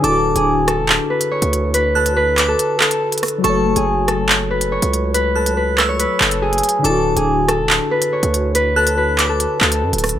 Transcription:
<<
  \new Staff \with { instrumentName = "Synth bell" } { \time 4/4 \key d \lydian \tempo 4 = 141 d'''4 r2. | r8 fis'''4 d'''8 r2 | cis'''4 r2. | r8 fis'''4 e'''2~ e'''8 |
d'''4 r2. | r8 fis'''4 d'''8 r2 | }
  \new Staff \with { instrumentName = "Harp" } { \time 4/4 \key d \lydian a'8. gis'8. a'4 b'8 cis''4 | b'8 a'8 b'8. a'8. a'4. | a'8. gis'8. a'4 b'8 cis''4 | b'8 a'8 b'8. cis''16 b'8 a'8 gis'8 r8 |
a'8. gis'8. a'4 b'8 cis''4 | b'8 a'8 b'8. a'8. a'4. | }
  \new Staff \with { instrumentName = "Tine electric piano" } { \time 4/4 \key d \lydian <d d' e' fis'>1~ | <d d' e' fis'>1 | <fis a fis' cis''>1~ | <fis a fis' cis''>1 |
<d d' e' fis'>1~ | <d d' e' fis'>1 | }
  \new Staff \with { instrumentName = "808-style bass" } { \clef bass \time 4/4 \key d \lydian d,,8. d,,4 e,,16 d,,16 r4 d,8.~ | d,2 r2 | fis,,8. fis,,2~ fis,,8 cis,8.~ | cis,2~ cis,16 r16 fis,,4 r8 |
d,,8. d,,4 e,,16 d,,16 r4 d,8.~ | d,2~ d,16 r16 d,8 fis,16 d,,8 d,16 | }
  \new DrumStaff \with { instrumentName = "Drums" } \drummode { \time 4/4 hh8. hh16 r8 <hh ss>8 hc8. hh16 r16 hh16 hh8 | hh8. hh16 r8 <hc hh>8 hh8 hc16 hh16 r16 hh32 hh32 <hh hho ss>32 hh16. | hh8. hh16 r8 <hh ss>8 hc8. hh16 r16 hh16 hh8 | hh8. hh16 r8 <hc hh ss>8 hh8 hc16 hh16 r16 hh32 hh32 hh32 hh16. |
hh8. hh16 r8 <hh ss>8 hc8. hh16 r16 hh16 hh8 | hh8. hh16 r8 <hc hh>8 hh8 hc16 hh16 r16 hh32 hh32 <hh hho ss>32 hh16. | }
>>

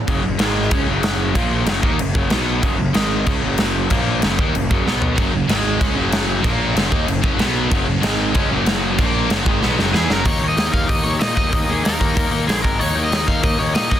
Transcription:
<<
  \new Staff \with { instrumentName = "Overdriven electric guitar" } { \time 4/4 \key fis \major \tempo 4 = 189 r1 | r1 | r1 | r1 |
r1 | r1 | r1 | r2. gis'8 ais'8 |
\key dis \minor cis''8. dis''8. eis''8 dis''8 cis''8 dis''8 dis''8~ | dis''8 gis'8 ais'2 gis'8 ais'8 | cis''8. dis''8. eis''8 dis''8 cis''8 dis''8 dis''8 | }
  \new Staff \with { instrumentName = "Distorted electric guitar" } { \clef bass \time 4/4 \key fis \major <fis, cis fis>8 <fis, cis>8 <gis, dis gis>4 <cis gis cis'>8 <fis, cis fis>4. | <ais, eis ais>4 <fis, cis fis>8 <dis ais dis'>8 <fis, cis>8 <fis, cis fis>8 <b, fis b>4 | <fis, cis fis>8 <fis, cis>8 <gis, dis gis>4 <cis gis cis'>8 <fis, cis fis>4. | <ais, eis ais>4 <fis, cis fis>8 <dis ais dis'>8 <fis, cis>8 <fis, cis fis>8 <b, fis b>4 |
<fis, cis fis>8 <fis, cis>8 <gis, dis gis>4 <cis gis cis'>8 <fis, cis fis>4. | <ais, eis ais>4 <fis, cis fis>8 <dis ais dis'>8 <fis, cis>8 <fis, cis fis>8 <b, fis b>4 | <fis, cis fis>8 <fis, cis>8 <gis, dis gis>4 <cis gis cis'>8 <fis, cis fis>4. | <ais, eis ais>4 <fis, cis fis>8 <gis, dis gis>8 <b, fis b>8 <fis, cis fis>8 <e b e'>8 <fis, cis fis>8 |
\key dis \minor <dis ais dis'>8 <dis ais dis'>8 <dis ais dis'>8 <dis ais dis'>8 <dis ais dis'>8 <dis ais dis'>8 <dis ais dis'>8 <dis ais dis'>8 | <dis ais dis'>8 <dis ais dis'>8 <dis ais dis'>8 <dis ais dis'>8 <dis ais dis'>8 <dis ais dis'>8 <ais, eis ais>8 <gis, dis gis>8 | <dis ais dis'>8 <dis ais dis'>8 <dis ais dis'>8 <dis ais dis'>8 <dis ais dis'>8 <dis ais dis'>8 <dis ais dis'>8 <dis ais dis'>8 | }
  \new Staff \with { instrumentName = "Distorted electric guitar" } { \clef bass \time 4/4 \key fis \major r1 | r1 | r1 | r1 |
<fis, cis fis>8 <fis, cis>8 <gis, dis gis>4 <cis gis cis'>8 <fis, cis fis>4. | <ais, eis ais>4 <fis, cis fis>8 <dis ais dis'>8 <fis, cis>8 <fis, cis fis>8 <b, fis b>4 | <fis, cis fis>8 <fis, cis>8 <gis, dis gis>4 <cis gis cis'>8 <fis, cis fis>4. | <ais, eis ais>4 <fis, cis fis>8 <gis, dis gis>8 <b, fis b>8 <fis, cis fis>8 <e b e'>8 <fis, cis fis>8 |
\key dis \minor r1 | r1 | r1 | }
  \new Staff \with { instrumentName = "Distorted electric guitar" } { \clef bass \time 4/4 \key fis \major <fis, cis fis>8 <fis, cis>8 <gis, dis gis>4 <cis gis cis'>8 <fis, cis fis>4. | <ais, eis ais>4 <fis, cis fis>8 <dis ais dis'>8 <fis, cis>8 <fis, cis fis>8 <b, fis b>4 | <fis, cis fis>8 <fis, cis>8 <gis, dis gis>4 <cis gis cis'>8 <fis, cis fis>4. | <ais, eis ais>4 <fis, cis fis>8 <dis ais dis'>8 <fis, cis>8 <fis, cis fis>8 <b, fis b>4 |
<fis, cis fis>8 <fis, cis>8 <gis, dis gis>4 <cis gis cis'>8 <fis, cis fis>4. | <ais, eis ais>4 <fis, cis fis>8 <dis ais dis'>8 <fis, cis>8 <fis, cis fis>8 <b, fis b>4 | <fis, cis fis>8 <fis, cis>8 <gis, dis gis>4 <cis gis cis'>8 <fis, cis fis>4. | <ais, eis ais>4 <fis, cis fis>8 <gis, dis gis>8 <b, fis b>8 <fis, cis fis>8 <e b e'>8 <fis, cis fis>8 |
\key dis \minor r1 | r1 | r1 | }
  \new Staff \with { instrumentName = "Picked electric bass" } { \clef bass \time 4/4 \key fis \major fis,,8 fis,,8 gis,,4 cis,8 fis,,4. | ais,,4 fis,,8 dis,8 fis,,8 fis,,8 b,,4 | fis,,8 fis,,8 gis,,4 cis,8 fis,,4. | ais,,4 fis,,8 dis,8 fis,,8 fis,,8 b,,4 |
fis,,8 fis,,8 gis,,4 cis,8 fis,,4. | ais,,4 fis,,8 dis,8 fis,,8 fis,,8 b,,4 | fis,,8 fis,,8 gis,,4 cis,8 fis,,4. | ais,,4 fis,,8 gis,,8 b,,8 fis,,8 e,8 fis,,8 |
\key dis \minor dis,8 dis,8 dis,8 dis,8 dis,8 dis,8 ais,8 dis,8 | dis,8 dis,8 dis,8 dis,8 dis,8 dis,8 ais,,8 gis,,8 | dis,8 dis,8 dis,8 dis,8 dis,8 dis,8 ais,8 dis,8 | }
  \new DrumStaff \with { instrumentName = "Drums" } \drummode { \time 4/4 <cymc bd>4 <cymc sn>4 <cymc bd>4 <cymc sn>4 | <cymc bd>4 <cymc sn>8 bd8 cymc8 bd8 <cymc sn>4 | <cymc bd>4 <cymc sn>4 <cymc bd>4 <cymc sn>4 | <cymc bd>4 <cymc sn>8 bd8 cymc8 bd8 sn8 tomfh8 |
<cymc bd>4 <cymc sn>4 <cymc bd>4 <cymc sn>4 | <cymc bd>4 <cymc sn>8 bd8 cymc8 bd8 <cymc sn>4 | <cymc bd>4 <cymc sn>4 <cymc bd>4 <cymc sn>4 | <cymc bd>4 <cymc sn>8 bd8 sn8 sn8 sn8 sn8 |
<hho bd>4 <hho sn>8 bd8 <hho bd>4 <hho sn>8 bd8 | <hho bd>4 <hho sn>8 bd8 <hho bd>4 <hho sn>8 bd8 | hho4 <hho sn>8 bd8 <hho bd>4 <hho sn>8 bd8 | }
>>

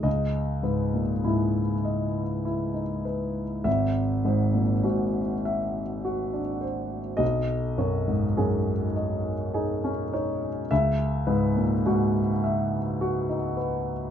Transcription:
<<
  \new Staff \with { instrumentName = "Grand piano" } { \time 3/4 \key cis \dorian \tempo 4 = 51 << { dis''4 r2 | e''4 r2 | dis''4 r2 | e''4 r2 | } \\ { r8 b'8 e'8 dis''8 e'8 b'8 | r8 bis'8 fis'8 e''8 fis'8 bis'8 | r8 cis''8 gis'8 dis''8 gis'8 cis''8 | r8 b'8 fis'8 e''8 fis'8 b'8 | } >> }
  \new Staff \with { instrumentName = "Grand piano" } { \clef bass \time 3/4 \key cis \dorian cis,8 gis,16 ais,16 gis,8 r8. dis'16 r8 | gis,,8 gis,16 ais,16 gis,8 r8. d'16 r8 | b,,8 fis,16 gis,16 fis,8 r8 dis'16 cis'16 dis'8 | cis,8 gis,16 ais,16 gis,8 r8. dis'16 r8 | }
>>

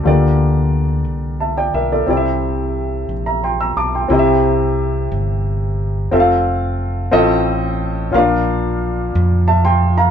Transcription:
<<
  \new Staff \with { instrumentName = "Grand piano" } { \time 6/8 \key c \mixolydian \tempo 4. = 59 << { r2 <e'' a''>16 <d'' g''>16 <bes' e''>16 <a' d''>16~ | <a' d''>16 r4. <e'' bes''>16 <g'' c'''>16 <bes'' e'''>16 <a'' d'''>16 <g'' c'''>16~ | <g'' c'''>16 r2 r8. | r2. |
r2 <e'' a''>16 <g'' c'''>8 <f'' bes''>16 | } \\ { <a bes f' g' d''>2. | <c' e' g' d'' e''>2. | <c' e' g' ees'' e''>2. | <c' f' a' e'' f''>4. <c' f' a' ees''>4. |
<des' d' f' bes' f''>2. | } >> }
  \new Staff \with { instrumentName = "Grand piano" } { \clef bass \time 6/8 \key c \mixolydian d4. r4. | c4. r4. | c4. r4. | r4. a,4. |
bes,4. r4. | }
  \new Staff \with { instrumentName = "Fingered electric bass" } { \clef bass \time 6/8 \key c \mixolydian d,4. c,4 b,,8 | c,4. bes,,4 b,,8 | c,4. g,,4. | f,,4. a,,4. |
bes,,4. f,4. | }
>>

